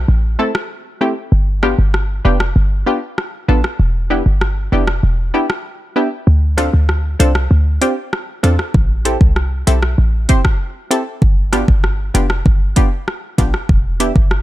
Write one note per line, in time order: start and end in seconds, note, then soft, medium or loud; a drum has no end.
0.08 0.37 A1 loud
0.39 0.51 A3 medium
0.39 0.52 C4 medium
0.39 0.52 E4 medium
0.39 0.52 A4 loud
0.55 cross-stick loud
1.01 1.13 A3 medium
1.01 1.13 C4 medium
1.01 1.14 E4 medium
1.01 1.14 G4 loud
1.32 1.74 G1 loud
1.63 1.75 B3 medium
1.63 1.75 D4 medium
1.63 1.75 F4 medium
1.63 1.75 G4 loud
1.63 cross-stick medium
1.79 2.21 G1 medium
1.94 cross-stick medium
2.25 2.53 F1 medium
2.25 2.37 B3 medium
2.25 2.37 D4 medium
2.25 2.37 F4 medium
2.25 2.37 G4 loud
2.40 cross-stick loud
2.56 2.84 G1 loud
2.86 2.99 B3 medium
2.86 2.99 D4 medium
2.86 2.99 F4 medium
2.86 2.99 G4 loud
3.18 cross-stick medium
3.48 3.63 A1 loud
3.48 3.61 B3 medium
3.48 3.61 D4 medium
3.48 3.61 F4 medium
3.48 3.61 A4 loud
3.64 cross-stick medium
3.80 4.22 E1 loud
4.10 4.23 B3 medium
4.10 4.23 D4 medium
4.10 4.23 E4 medium
4.10 4.23 G4 medium
4.26 4.68 G1 medium
4.41 cross-stick medium
4.72 5.01 F1 medium
4.72 4.85 B3 medium
4.72 4.85 D4 medium
4.72 4.85 E4 medium
4.72 4.85 G4 loud
4.87 cross-stick loud
5.03 5.32 E1 loud
5.34 5.46 B3 medium
5.34 5.46 D4 medium
5.34 5.47 E4 medium
5.34 5.47 G4 loud
5.50 cross-stick loud
5.96 6.08 B3 medium
5.96 6.08 D4 medium
5.96 6.08 E4 medium
5.96 6.09 G4 loud
6.27 6.69 D2 loud
6.57 6.70 C4 medium
6.57 6.70 D4 medium
6.57 6.70 F4 medium
6.57 6.70 A4 loud
6.57 cross-stick loud
6.57 closed hi-hat medium
6.73 7.16 D2 medium
6.89 cross-stick medium
7.19 7.48 C2 medium
7.19 7.32 C4 loud
7.19 7.32 D4 medium
7.19 7.32 F4 medium
7.19 7.32 A4 loud
7.19 closed hi-hat medium
7.35 cross-stick loud
7.51 7.79 D2 loud
7.81 7.94 C4 medium
7.81 7.94 D4 medium
7.81 7.94 F4 medium
7.81 7.94 G4 loud
7.81 closed hi-hat medium
8.13 cross-stick medium
8.43 8.58 E2 medium
8.43 8.56 C4 medium
8.43 8.56 D4 medium
8.43 8.56 F4 medium
8.43 8.56 A4 loud
8.43 cross-stick medium
8.43 closed hi-hat medium
8.59 cross-stick medium
8.74 9.17 A1 loud
8.74 kick loud
9.05 9.18 C4 medium
9.05 9.18 E4 medium
9.05 9.18 G4 medium
9.05 9.18 A4 medium
9.05 closed hi-hat medium
9.21 9.63 C2 medium
9.21 kick medium
9.36 cross-stick medium
9.67 9.96 B1 loud
9.67 9.79 C4 medium
9.67 9.80 E4 medium
9.67 9.80 G4 medium
9.67 9.80 A4 loud
9.67 closed hi-hat medium
9.83 cross-stick loud
9.98 10.26 A1 loud
10.29 10.41 C4 medium
10.29 10.41 E4 medium
10.29 10.41 G4 medium
10.29 10.42 C5 loud
10.29 kick medium
10.29 closed hi-hat medium
10.45 kick medium
10.45 cross-stick loud
10.91 11.03 C4 medium
10.91 11.03 E4 medium
10.91 11.03 G4 medium
10.91 11.03 A4 loud
10.91 closed hi-hat medium
11.22 11.64 G1 loud
11.22 kick loud
11.53 11.65 B3 medium
11.53 11.65 D4 medium
11.53 11.65 F4 medium
11.53 11.65 G4 loud
11.53 cross-stick loud
11.53 closed hi-hat medium
11.68 12.11 G1 medium
11.68 kick medium
11.84 cross-stick medium
12.14 12.43 F1 medium
12.14 12.27 B3 medium
12.14 12.27 D4 medium
12.14 12.27 F4 medium
12.14 12.27 G4 loud
12.14 closed hi-hat medium
12.30 cross-stick loud
12.46 12.74 G1 loud
12.46 kick medium
12.76 12.89 B3 medium
12.76 12.89 D4 medium
12.76 12.89 F4 medium
12.76 12.89 G4 loud
12.76 kick medium
12.76 closed hi-hat medium
13.08 cross-stick medium
13.38 13.52 A1 loud
13.38 13.51 B3 medium
13.38 13.51 D4 medium
13.38 13.51 F4 medium
13.38 13.51 G4 loud
13.38 kick medium
13.38 closed hi-hat medium
13.54 cross-stick medium
13.69 14.12 E1 loud
13.69 kick loud
14.00 14.12 B3 medium
14.00 14.12 D4 medium
14.00 14.13 E4 medium
14.00 14.13 G4 loud
14.00 closed hi-hat medium
14.16 14.42 G1 medium
14.16 kick medium
14.31 cross-stick medium